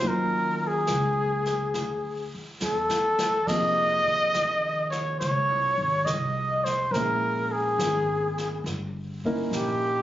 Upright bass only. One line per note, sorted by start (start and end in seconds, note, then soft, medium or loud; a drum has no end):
0.03 0.86 D#2 medium
0.89 1.73 C#2 medium
1.74 2.29 D2 medium
2.34 muted upright bass stroke soft
2.62 3.46 E2 medium
3.47 4.02 F2 medium
4.05 muted upright bass stroke soft
4.35 5.18 D#2 medium
5.21 5.48 C#2 medium
5.48 5.77 C2 soft
5.78 6.05 G#1 medium
6.05 6.90 C2 medium
6.91 7.76 A#1 medium
7.78 8.63 G#1 medium
8.64 9.49 G1 medium
9.51 10.02 A#1 medium